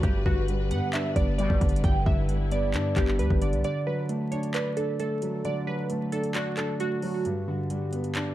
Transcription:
0.00 0.25 G1 loud
0.00 1.16 G2 medium
0.00 3.61 G3 medium
0.00 1.80 D4 medium
0.00 0.20 G4 medium
0.00 3.60 B4 medium
0.00 kick loud
0.00 closed hi-hat medium
0.26 0.72 G1 loud
0.26 1.39 D3 medium
0.26 0.43 F#4 medium
0.26 kick loud
0.48 1.37 G3 loud
0.48 closed hi-hat medium
0.71 0.82 G2 loud
0.71 1.15 B3 medium
0.71 0.88 F#5 medium
0.71 closed hi-hat medium
0.93 2.06 D4 loud
0.93 1.10 E5 medium
0.93 clap loud
0.93 closed hi-hat medium
1.16 1.49 G1 loud
1.16 2.29 B3 medium
1.16 1.33 D5 medium
1.16 kick loud
1.16 closed hi-hat medium
1.38 1.58 D2 loud
1.38 1.58 B2 loud
1.38 1.58 G3 loud
1.38 2.27 G3 medium
1.38 1.81 D5 medium
1.38 closed hi-hat medium
1.50 1.61 G1 loud
1.50 kick medium
1.61 1.83 G1 medium
1.61 2.05 D3 medium
1.61 kick loud
1.61 closed hi-hat medium
1.69 closed hi-hat medium
1.76 closed hi-hat medium
1.84 2.05 G1 loud
1.84 2.97 G2 medium
1.84 3.62 E4 medium
1.84 2.01 G5 medium
1.84 kick loud
1.84 closed hi-hat medium
2.06 2.75 G1 loud
2.06 3.19 D3 medium
2.06 2.23 E5 medium
2.06 kick loud
2.29 3.18 G3 medium
2.29 closed hi-hat medium
2.51 2.95 B3 medium
2.51 2.94 D5 medium
2.51 closed hi-hat medium
2.74 2.95 G2 loud
2.74 3.64 D4 loud
2.74 clap loud
2.74 closed hi-hat medium
2.96 3.21 G1 loud
2.96 3.64 B3 medium
2.96 3.14 G4 medium
2.96 kick loud
2.96 clap medium
2.96 closed hi-hat medium
3.08 clap medium
3.19 3.30 D2 loud
3.19 3.64 G3 medium
3.19 3.36 B4 medium
3.19 closed hi-hat medium
3.30 3.54 G1 loud
3.30 kick medium
3.42 3.63 D3 medium
3.42 3.59 D5 medium
3.42 closed hi-hat medium
3.42 open hi-hat medium
3.53 3.64 B1 loud
3.53 closed hi-hat soft
3.64 4.77 D3 medium
3.64 3.81 D5 medium
3.64 closed hi-hat medium
3.87 4.99 F#3 medium
3.87 4.04 B4 medium
4.09 4.98 A3 medium
4.09 closed hi-hat medium
4.32 4.76 D4 medium
4.32 4.49 C#5 medium
4.32 closed hi-hat medium
4.43 closed hi-hat medium
4.54 4.72 B4 medium
4.54 5.67 D5 loud
4.54 clap loud
4.54 closed hi-hat medium
4.77 5.90 D4 medium
4.77 4.94 A4 medium
4.77 closed hi-hat medium
5.00 5.88 A3 medium
5.00 5.42 A4 medium
5.00 closed hi-hat medium
5.22 5.65 F#3 medium
5.22 closed hi-hat medium
5.45 6.57 D3 medium
5.45 5.62 D5 medium
5.45 closed hi-hat medium
5.67 6.80 F#3 medium
5.67 5.84 B4 medium
5.90 6.79 A3 medium
5.90 closed hi-hat medium
6.12 6.56 D4 medium
6.12 6.29 A4 medium
6.12 closed hi-hat medium
6.24 closed hi-hat medium
6.35 6.52 F#4 medium
6.35 7.25 D5 loud
6.35 clap loud
6.35 closed hi-hat medium
6.57 7.25 D4 medium
6.57 6.74 A4 medium
6.57 clap medium
6.57 closed hi-hat medium
6.80 7.25 A3 medium
6.80 7.23 F#4 medium
6.80 closed hi-hat medium
7.02 7.25 F#3 medium
7.02 open hi-hat medium
7.25 8.35 G2 medium
7.25 closed hi-hat medium
7.48 8.35 D3 medium
7.70 8.35 G3 medium
7.70 closed hi-hat medium
7.93 8.35 B3 medium
7.93 closed hi-hat medium
8.04 closed hi-hat medium
8.15 8.35 D4 loud
8.15 clap loud
8.15 closed hi-hat medium

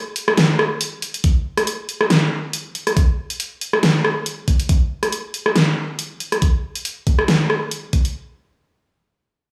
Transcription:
0.16 closed hi-hat medium
0.28 cross-stick medium
0.38 snare loud
0.38 closed hi-hat medium
0.59 cross-stick medium
0.81 closed hi-hat medium
1.02 closed hi-hat medium
1.14 closed hi-hat medium
1.24 kick loud
1.24 closed hi-hat medium
1.57 cross-stick medium
1.57 closed hi-hat medium
1.67 closed hi-hat medium
1.89 closed hi-hat medium
2.01 cross-stick medium
2.10 snare loud
2.10 closed hi-hat medium
2.53 closed hi-hat medium
2.75 closed hi-hat medium
2.87 cross-stick medium
2.87 closed hi-hat medium
2.97 kick loud
2.97 closed hi-hat medium
3.30 closed hi-hat medium
3.40 closed hi-hat medium
3.61 closed hi-hat medium
3.73 cross-stick medium
3.83 snare loud
3.83 closed hi-hat medium
4.05 cross-stick medium
4.26 closed hi-hat medium
4.48 kick medium
4.48 closed hi-hat medium
4.60 closed hi-hat medium
4.69 kick loud
4.69 closed hi-hat medium
5.03 cross-stick medium
5.03 closed hi-hat medium
5.12 closed hi-hat medium
5.34 closed hi-hat medium
5.46 cross-stick medium
5.56 snare loud
5.56 closed hi-hat medium
5.99 closed hi-hat medium
6.20 closed hi-hat soft
6.32 cross-stick medium
6.32 closed hi-hat medium
6.42 kick loud
6.42 closed hi-hat medium
6.75 closed hi-hat medium
6.85 closed hi-hat medium
7.07 kick medium
7.07 closed hi-hat soft
7.19 cross-stick medium
7.28 snare loud
7.28 closed hi-hat medium
7.50 cross-stick medium
7.71 closed hi-hat medium
7.93 kick medium
7.93 closed hi-hat medium
8.05 closed hi-hat soft

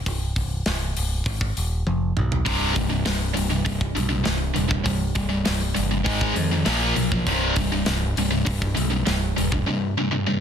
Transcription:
0.06 0.32 C1 medium
0.06 kick medium
0.06 open hi-hat medium
0.36 0.61 C1 medium
0.36 kick medium
0.36 open hi-hat medium
0.66 0.92 C1 loud
0.66 snare loud
0.66 open hi-hat medium
0.97 1.22 C1 medium
0.97 open hi-hat medium
1.25 1.51 G#1 medium
1.25 kick loud
1.25 open hi-hat medium
1.41 kick medium
1.57 1.82 D#1 medium
1.57 open hi-hat medium
1.87 2.12 F1 loud
1.87 high tom medium
2.17 2.43 B1 medium
2.17 mid tom medium
2.32 floor tom medium
2.45 2.71 C1 medium
2.45 2.74 C2 medium
2.45 2.73 G2 medium
2.45 2.74 C3 loud
2.45 kick loud
2.45 open hi-hat medium
2.74 3.01 C1 loud
2.74 2.89 C2 medium
2.74 2.89 G2 medium
2.74 kick loud
2.74 open hi-hat medium
2.90 3.04 C2 medium
2.90 3.05 G2 medium
3.06 3.32 C1 medium
3.06 3.33 C2 medium
3.06 3.33 G2 medium
3.06 snare loud
3.06 open hi-hat medium
3.34 3.62 C1 medium
3.34 3.49 C2 medium
3.34 3.49 G2 medium
3.34 open hi-hat medium
3.50 3.64 C2 medium
3.50 3.64 G2 medium
3.65 3.92 C1 loud
3.65 3.92 C2 medium
3.65 3.92 G2 medium
3.65 kick loud
3.65 open hi-hat medium
3.81 kick medium
3.95 4.22 B1 medium
3.95 4.09 C2 medium
3.95 4.08 G2 medium
3.95 open hi-hat soft
4.09 4.23 C2 medium
4.09 4.24 G2 medium
4.24 4.51 C1 medium
4.24 4.52 C2 medium
4.24 4.52 G2 medium
4.24 snare loud
4.24 open hi-hat medium
4.54 4.82 D#1 medium
4.54 4.68 C2 medium
4.54 4.67 G2 medium
4.54 open hi-hat soft
4.69 4.83 C2 medium
4.69 4.83 G2 medium
4.69 kick medium
4.84 5.11 C1 medium
4.84 5.12 C2 medium
4.84 5.12 G2 medium
4.84 kick loud
4.84 open hi-hat medium
5.15 5.42 C1 loud
5.15 5.29 C2 medium
5.15 5.28 G2 medium
5.15 kick medium
5.15 open hi-hat medium
5.29 5.44 C2 medium
5.29 5.44 G2 medium
5.45 5.72 C1 medium
5.45 5.72 C2 medium
5.45 5.72 G2 medium
5.45 snare loud
5.45 open hi-hat medium
5.75 6.03 G1 medium
5.75 5.90 C2 medium
5.75 5.90 G2 medium
5.75 open hi-hat medium
5.91 6.04 C2 medium
5.91 6.04 G2 medium
6.04 6.31 G#1 medium
6.04 6.33 G#2 medium
6.04 6.33 D#3 loud
6.04 6.34 G#3 loud
6.04 kick loud
6.04 open hi-hat medium
6.21 kick medium
6.34 6.62 F2 medium
6.34 6.50 G#2 medium
6.34 6.50 D#3 medium
6.34 open hi-hat medium
6.51 6.65 G#2 medium
6.51 6.65 D#3 medium
6.65 6.92 A#1 loud
6.65 6.94 A#2 medium
6.65 6.94 F3 medium
6.65 6.94 A#3 medium
6.65 snare loud
6.65 open hi-hat medium
6.96 7.22 B1 medium
6.96 7.11 A#2 medium
6.96 7.11 F3 medium
6.96 open hi-hat soft
7.12 7.26 A#2 medium
7.12 7.26 F3 medium
7.12 kick medium
7.27 7.52 C1 medium
7.27 7.55 C2 medium
7.27 7.55 G2 loud
7.27 7.55 C3 loud
7.27 kick medium
7.27 open hi-hat medium
7.56 7.82 C1 medium
7.56 7.72 C2 medium
7.56 7.71 G2 medium
7.56 kick medium
7.56 open hi-hat medium
7.72 7.85 C2 medium
7.72 7.85 G2 medium
7.86 8.12 C1 medium
7.86 8.13 C2 medium
7.86 8.13 G2 medium
7.86 snare loud
7.86 open hi-hat medium
8.16 8.42 C1 medium
8.16 8.31 C2 medium
8.16 8.29 G2 medium
8.16 open hi-hat medium
8.30 8.44 C2 medium
8.30 8.45 G2 medium
8.45 8.72 C1 loud
8.45 8.73 C2 medium
8.45 8.73 G2 medium
8.45 kick loud
8.45 open hi-hat medium
8.62 kick medium
8.75 9.02 B1 medium
8.75 8.90 C2 medium
8.75 8.89 G2 medium
8.75 open hi-hat medium
8.90 9.04 C2 medium
8.90 9.05 G2 medium
9.06 9.32 C1 medium
9.06 9.33 C2 medium
9.06 9.33 G2 medium
9.06 snare loud
9.06 open hi-hat medium
9.36 9.63 D#1 medium
9.36 9.51 C2 medium
9.36 9.51 G2 medium
9.36 open hi-hat soft
9.52 9.65 C2 medium
9.52 9.66 G2 medium
9.52 kick medium
9.66 9.93 C2 medium
9.66 9.94 G2 medium
9.97 10.10 C2 medium
9.97 10.10 G2 medium
10.11 10.25 C2 medium
10.11 10.26 G2 medium
10.26 10.40 C2 medium
10.26 10.40 G2 medium

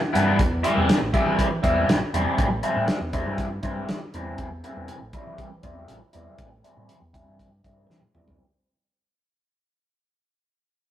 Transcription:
0.00 0.37 D4 medium
0.00 0.37 E4 medium
0.00 0.37 G4 medium
0.13 0.41 G2 medium
0.13 0.39 E3 medium
0.13 0.39 G3 medium
0.13 0.39 B3 medium
0.13 0.39 E4 medium
0.13 closed hi-hat medium
0.39 0.61 E2 loud
0.39 kick loud
0.39 closed hi-hat medium
0.63 0.97 E3 medium
0.63 0.97 G3 medium
0.63 0.97 C4 medium
0.63 0.96 E4 medium
0.63 closed hi-hat medium
0.77 0.88 E2 medium
0.89 snare loud
0.89 closed hi-hat medium
1.02 1.13 A1 medium
1.14 1.47 E3 medium
1.14 1.47 G3 medium
1.14 1.47 C4 medium
1.14 1.46 E4 medium
1.14 kick medium
1.14 closed hi-hat medium
1.26 1.59 E3 medium
1.39 kick medium
1.39 closed hi-hat medium
1.63 1.86 E2 medium
1.63 1.97 E3 medium
1.63 1.97 G3 medium
1.63 1.96 C4 medium
1.63 1.96 E4 medium
1.63 kick medium
1.63 closed hi-hat medium
1.88 2.00 A1 medium
1.88 snare loud
1.88 closed hi-hat medium
2.14 2.25 E2 medium
2.14 2.47 E3 medium
2.14 2.47 G3 medium
2.14 2.47 C4 medium
2.14 2.46 E4 medium
2.14 closed hi-hat medium
2.38 2.61 A1 medium
2.38 kick loud
2.38 closed hi-hat medium
2.63 2.96 E3 medium
2.63 2.96 G3 medium
2.63 2.96 C4 medium
2.63 2.96 E4 medium
2.63 closed hi-hat medium
2.76 2.87 A2 medium
2.88 snare loud
2.88 closed hi-hat medium
3.01 3.23 E2 medium
3.13 3.46 E3 medium
3.13 3.46 G3 medium
3.13 3.46 C4 medium
3.13 3.46 E4 medium
3.13 kick medium
3.13 closed hi-hat medium
3.26 3.59 G2 medium
3.38 kick medium
3.38 closed hi-hat medium
3.63 3.86 G2 medium
3.63 3.97 E3 medium
3.63 3.97 G3 medium
3.63 3.97 C4 medium
3.63 3.96 E4 medium
3.63 kick medium
3.63 closed hi-hat medium
3.89 4.00 E3 medium
3.89 snare loud
3.89 closed hi-hat medium
4.14 4.36 E2 medium
4.14 4.47 E3 medium
4.14 4.47 G3 medium
4.14 4.47 C4 medium
4.14 4.47 E4 medium
4.14 closed hi-hat medium
4.38 4.61 E2 medium
4.38 kick loud
4.38 closed hi-hat medium
4.64 4.97 E3 medium
4.64 4.97 G3 medium
4.64 4.96 C4 medium
4.64 4.96 E4 medium
4.64 closed hi-hat medium
4.77 4.88 E2 medium
4.88 closed hi-hat medium
5.02 5.13 A1 medium
5.13 5.47 E3 medium
5.13 5.47 G3 medium
5.13 5.47 C4 medium
5.13 5.46 E4 medium
5.13 kick medium
5.13 closed hi-hat medium
5.27 5.60 E3 medium
5.38 kick medium
5.38 closed hi-hat medium
5.63 5.86 E2 medium
5.63 5.97 E3 medium
5.63 5.96 G3 medium
5.63 5.96 C4 medium
5.63 5.96 E4 medium
5.63 kick medium
5.63 closed hi-hat medium
5.88 6.00 A1 medium
5.88 closed hi-hat medium
6.13 6.25 E2 medium
6.13 6.47 E3 medium
6.13 6.47 G3 medium
6.13 6.47 C4 medium
6.13 6.46 E4 medium
6.13 closed hi-hat medium
6.38 6.61 A1 medium
6.38 kick loud
6.38 closed hi-hat medium
6.64 6.97 E3 medium
6.64 6.97 G3 medium
6.64 6.97 C4 medium
6.64 6.97 E4 medium
6.64 closed hi-hat medium
6.77 6.88 A2 medium
6.89 closed hi-hat medium
7.01 7.24 E2 medium
7.14 7.47 E3 medium
7.14 7.47 G3 medium
7.14 7.47 C4 medium
7.14 7.47 E4 medium
7.14 kick medium
7.14 closed hi-hat medium
7.27 7.60 G2 medium
7.39 kick medium
7.39 closed hi-hat medium
7.64 7.87 G2 medium
7.64 7.98 E3 medium
7.64 7.97 G3 medium
7.64 7.97 C4 medium
7.64 7.97 E4 medium
7.64 kick medium
7.64 closed hi-hat medium
7.90 8.01 E3 medium
7.90 snare soft
8.02 high tom medium
8.15 8.38 E2 medium
8.15 8.41 E3 medium
8.15 8.40 G3 medium
8.15 8.40 C4 medium
8.15 8.40 E4 medium
8.15 mid tom medium
8.28 floor tom medium

